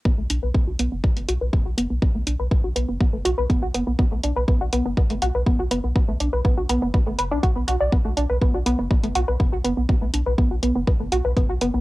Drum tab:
HH |--x---x--xx---x-|--x---x---x-x-x-|--x---x--xx---x-|--x---x---x-x-x-|
BD |o---o---o---o---|o---o---o---o---|o---o---o---o---|o---o---o---o---|

HH |--x---x--xx---x-|--x---x---x-x-x-|
BD |o---o---o---o---|o---o---o---o---|